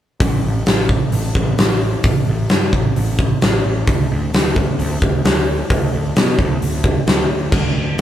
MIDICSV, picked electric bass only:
0, 0, Header, 1, 2, 480
1, 0, Start_track
1, 0, Tempo, 456969
1, 218, Time_signature, 4, 2, 24, 8
1, 8414, End_track
2, 0, Start_track
2, 0, Title_t, "Picked electric bass"
2, 0, Program_c, 0, 34
2, 214, Note_on_c, 0, 33, 87
2, 402, Note_off_c, 0, 33, 0
2, 458, Note_on_c, 0, 33, 85
2, 644, Note_off_c, 0, 33, 0
2, 702, Note_on_c, 0, 33, 80
2, 1073, Note_off_c, 0, 33, 0
2, 1177, Note_on_c, 0, 33, 90
2, 1364, Note_off_c, 0, 33, 0
2, 1420, Note_on_c, 0, 33, 84
2, 1607, Note_off_c, 0, 33, 0
2, 1658, Note_on_c, 0, 33, 82
2, 2031, Note_off_c, 0, 33, 0
2, 2146, Note_on_c, 0, 33, 84
2, 2331, Note_off_c, 0, 33, 0
2, 2381, Note_on_c, 0, 33, 93
2, 2568, Note_off_c, 0, 33, 0
2, 2627, Note_on_c, 0, 43, 88
2, 2811, Note_off_c, 0, 43, 0
2, 2866, Note_on_c, 0, 33, 89
2, 3051, Note_off_c, 0, 33, 0
2, 3109, Note_on_c, 0, 33, 85
2, 3479, Note_off_c, 0, 33, 0
2, 3592, Note_on_c, 0, 33, 95
2, 3775, Note_off_c, 0, 33, 0
2, 3831, Note_on_c, 0, 33, 86
2, 4015, Note_off_c, 0, 33, 0
2, 4072, Note_on_c, 0, 38, 89
2, 4255, Note_off_c, 0, 38, 0
2, 4322, Note_on_c, 0, 38, 92
2, 4501, Note_off_c, 0, 38, 0
2, 4555, Note_on_c, 0, 38, 91
2, 4922, Note_off_c, 0, 38, 0
2, 5026, Note_on_c, 0, 38, 99
2, 5211, Note_off_c, 0, 38, 0
2, 5271, Note_on_c, 0, 38, 85
2, 5454, Note_off_c, 0, 38, 0
2, 5509, Note_on_c, 0, 38, 97
2, 5878, Note_off_c, 0, 38, 0
2, 5991, Note_on_c, 0, 38, 85
2, 6174, Note_off_c, 0, 38, 0
2, 6235, Note_on_c, 0, 38, 95
2, 6416, Note_off_c, 0, 38, 0
2, 6473, Note_on_c, 0, 47, 93
2, 6655, Note_off_c, 0, 47, 0
2, 6708, Note_on_c, 0, 38, 90
2, 6892, Note_off_c, 0, 38, 0
2, 6952, Note_on_c, 0, 38, 85
2, 7318, Note_off_c, 0, 38, 0
2, 7427, Note_on_c, 0, 38, 84
2, 7610, Note_off_c, 0, 38, 0
2, 7661, Note_on_c, 0, 38, 83
2, 7846, Note_off_c, 0, 38, 0
2, 7899, Note_on_c, 0, 38, 91
2, 8085, Note_off_c, 0, 38, 0
2, 8135, Note_on_c, 0, 38, 88
2, 8322, Note_off_c, 0, 38, 0
2, 8379, Note_on_c, 0, 38, 86
2, 8414, Note_off_c, 0, 38, 0
2, 8414, End_track
0, 0, End_of_file